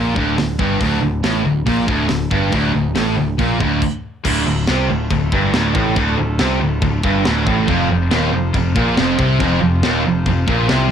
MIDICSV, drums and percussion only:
0, 0, Header, 1, 2, 480
1, 0, Start_track
1, 0, Tempo, 429799
1, 900, Time_signature, 4, 2, 24, 8
1, 12189, End_track
2, 0, Start_track
2, 0, Title_t, "Drums"
2, 180, Note_on_c, 9, 36, 103
2, 292, Note_off_c, 9, 36, 0
2, 424, Note_on_c, 9, 46, 51
2, 426, Note_on_c, 9, 38, 106
2, 536, Note_off_c, 9, 46, 0
2, 538, Note_off_c, 9, 38, 0
2, 659, Note_on_c, 9, 36, 110
2, 771, Note_off_c, 9, 36, 0
2, 899, Note_on_c, 9, 46, 62
2, 900, Note_on_c, 9, 36, 102
2, 1011, Note_off_c, 9, 46, 0
2, 1012, Note_off_c, 9, 36, 0
2, 1381, Note_on_c, 9, 46, 64
2, 1383, Note_on_c, 9, 38, 110
2, 1492, Note_off_c, 9, 46, 0
2, 1495, Note_off_c, 9, 38, 0
2, 1861, Note_on_c, 9, 36, 101
2, 1861, Note_on_c, 9, 46, 57
2, 1972, Note_off_c, 9, 36, 0
2, 1973, Note_off_c, 9, 46, 0
2, 2099, Note_on_c, 9, 36, 97
2, 2211, Note_off_c, 9, 36, 0
2, 2330, Note_on_c, 9, 46, 55
2, 2333, Note_on_c, 9, 38, 96
2, 2442, Note_off_c, 9, 46, 0
2, 2444, Note_off_c, 9, 38, 0
2, 2581, Note_on_c, 9, 36, 106
2, 2692, Note_off_c, 9, 36, 0
2, 2815, Note_on_c, 9, 46, 57
2, 2821, Note_on_c, 9, 36, 103
2, 2926, Note_off_c, 9, 46, 0
2, 2932, Note_off_c, 9, 36, 0
2, 3299, Note_on_c, 9, 46, 57
2, 3302, Note_on_c, 9, 38, 107
2, 3411, Note_off_c, 9, 46, 0
2, 3413, Note_off_c, 9, 38, 0
2, 3787, Note_on_c, 9, 36, 98
2, 3788, Note_on_c, 9, 46, 48
2, 3899, Note_off_c, 9, 36, 0
2, 3900, Note_off_c, 9, 46, 0
2, 4026, Note_on_c, 9, 36, 96
2, 4138, Note_off_c, 9, 36, 0
2, 4262, Note_on_c, 9, 49, 90
2, 4266, Note_on_c, 9, 36, 95
2, 4374, Note_off_c, 9, 49, 0
2, 4378, Note_off_c, 9, 36, 0
2, 4745, Note_on_c, 9, 36, 105
2, 4746, Note_on_c, 9, 49, 127
2, 4746, Note_on_c, 9, 52, 74
2, 4856, Note_off_c, 9, 36, 0
2, 4857, Note_off_c, 9, 49, 0
2, 4857, Note_off_c, 9, 52, 0
2, 5217, Note_on_c, 9, 52, 66
2, 5220, Note_on_c, 9, 38, 115
2, 5329, Note_off_c, 9, 52, 0
2, 5331, Note_off_c, 9, 38, 0
2, 5697, Note_on_c, 9, 52, 59
2, 5701, Note_on_c, 9, 36, 93
2, 5809, Note_off_c, 9, 52, 0
2, 5813, Note_off_c, 9, 36, 0
2, 5942, Note_on_c, 9, 36, 106
2, 6054, Note_off_c, 9, 36, 0
2, 6182, Note_on_c, 9, 52, 64
2, 6184, Note_on_c, 9, 38, 116
2, 6293, Note_off_c, 9, 52, 0
2, 6296, Note_off_c, 9, 38, 0
2, 6420, Note_on_c, 9, 36, 112
2, 6532, Note_off_c, 9, 36, 0
2, 6660, Note_on_c, 9, 36, 121
2, 6661, Note_on_c, 9, 52, 65
2, 6772, Note_off_c, 9, 36, 0
2, 6772, Note_off_c, 9, 52, 0
2, 7135, Note_on_c, 9, 52, 66
2, 7138, Note_on_c, 9, 38, 119
2, 7247, Note_off_c, 9, 52, 0
2, 7249, Note_off_c, 9, 38, 0
2, 7612, Note_on_c, 9, 52, 62
2, 7617, Note_on_c, 9, 36, 98
2, 7723, Note_off_c, 9, 52, 0
2, 7728, Note_off_c, 9, 36, 0
2, 7857, Note_on_c, 9, 36, 118
2, 7968, Note_off_c, 9, 36, 0
2, 8099, Note_on_c, 9, 52, 57
2, 8101, Note_on_c, 9, 38, 120
2, 8211, Note_off_c, 9, 52, 0
2, 8213, Note_off_c, 9, 38, 0
2, 8339, Note_on_c, 9, 36, 110
2, 8451, Note_off_c, 9, 36, 0
2, 8574, Note_on_c, 9, 52, 68
2, 8578, Note_on_c, 9, 36, 111
2, 8686, Note_off_c, 9, 52, 0
2, 8689, Note_off_c, 9, 36, 0
2, 9059, Note_on_c, 9, 52, 65
2, 9062, Note_on_c, 9, 38, 122
2, 9171, Note_off_c, 9, 52, 0
2, 9173, Note_off_c, 9, 38, 0
2, 9539, Note_on_c, 9, 36, 94
2, 9542, Note_on_c, 9, 52, 67
2, 9651, Note_off_c, 9, 36, 0
2, 9653, Note_off_c, 9, 52, 0
2, 9781, Note_on_c, 9, 36, 120
2, 9892, Note_off_c, 9, 36, 0
2, 10021, Note_on_c, 9, 52, 69
2, 10023, Note_on_c, 9, 38, 115
2, 10132, Note_off_c, 9, 52, 0
2, 10135, Note_off_c, 9, 38, 0
2, 10260, Note_on_c, 9, 36, 120
2, 10372, Note_off_c, 9, 36, 0
2, 10498, Note_on_c, 9, 52, 70
2, 10500, Note_on_c, 9, 36, 117
2, 10610, Note_off_c, 9, 52, 0
2, 10612, Note_off_c, 9, 36, 0
2, 10978, Note_on_c, 9, 52, 66
2, 10981, Note_on_c, 9, 38, 122
2, 11090, Note_off_c, 9, 52, 0
2, 11092, Note_off_c, 9, 38, 0
2, 11460, Note_on_c, 9, 36, 81
2, 11460, Note_on_c, 9, 52, 62
2, 11571, Note_off_c, 9, 36, 0
2, 11572, Note_off_c, 9, 52, 0
2, 11701, Note_on_c, 9, 36, 109
2, 11813, Note_off_c, 9, 36, 0
2, 11938, Note_on_c, 9, 52, 57
2, 11940, Note_on_c, 9, 38, 111
2, 12050, Note_off_c, 9, 52, 0
2, 12052, Note_off_c, 9, 38, 0
2, 12189, End_track
0, 0, End_of_file